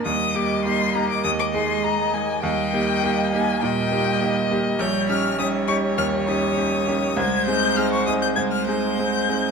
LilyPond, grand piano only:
\new Staff \with { instrumentName = "Grand piano" } { \time 4/4 \key ees \major \tempo 4 = 101 ees,8 <bes ees' g'>8 <bes ees' g'>8 <bes ees' g'>8 ees,8 <aes ees' aes'>8 <aes ees' aes'>8 <aes ees' aes'>8 | ees,8 <bes ees' g'>8 <bes ees' g'>8 <bes ees' g'>8 bes,8 <bes ees' g'>8 <bes ees' g'>8 <bes ees' g'>8 | \key aes \major bes,,8 <des' ees' g'>8 <des' ees' g'>8 <des' ees' g'>8 ees,8 <des' ees' g'>8 <des' ees' g'>8 <des' ees' g'>8 | c,8 <c' ees' aes'>8 <c' ees' aes'>8 <c' ees' aes'>8 c,8 <c' ees' aes'>8 <c' ees' aes'>8 <c' ees' aes'>8 | }